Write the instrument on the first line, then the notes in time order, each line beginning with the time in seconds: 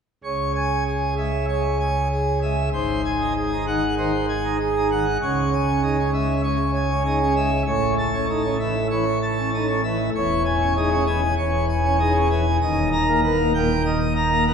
pipe organ
0.24 C#2 C#3 C#5
0.55 G#5
0.86 G#4
1.17 G#3 E5
1.49 G#3 C#5
1.79 G#5
2.11 G#4
2.43 G#3 E5
2.73 G#1 G#2 C5
3.05 G#5
3.20 D#4
3.36 G#4
3.52 D#4
3.67 D#3 F#5
3.98 D#3 C5
4.29 G#5
4.44 D#4
4.60 G#4
4.76 D#4
4.91 D#3 F#5
5.22 C#2 C#3 C#5
5.53 G#5
5.68 C#4
5.83 D#4 G#4
5.98 C#4
6.14 G#3 E5
6.44 G#3 C#5
6.75 G#5
6.90 C#4
7.05 D#4 G#4
7.21 C#4
7.36 G#3 E5
7.67 A1 A2 C#5
7.98 A5
8.13 C#4
8.29 D#4 A4
8.44 C#4
8.60 E3 E5
8.91 E3 C#5
9.22 A5
9.38 C#4
9.54 D#4 A4
9.69 C#4
9.84 E3 E5
10.15 E1 E2 C#5
10.45 G#5
10.62 C#4
10.77 D#4 G#4
10.92 C#4
11.07 E3 G#5
11.38 E1 E2 C#5
11.69 G#5
11.84 C#4
11.99 D#4 G#4
12.15 C#4
12.30 E3 G#5
12.61 D#1 D#2 D#5
12.93 A#5
13.08 A#3
13.23 B3 A#4
13.39 A#3
13.54 A#2 G5
13.85 A#2 D#5
14.16 A#5
14.32 A#3
14.47 B3 A#4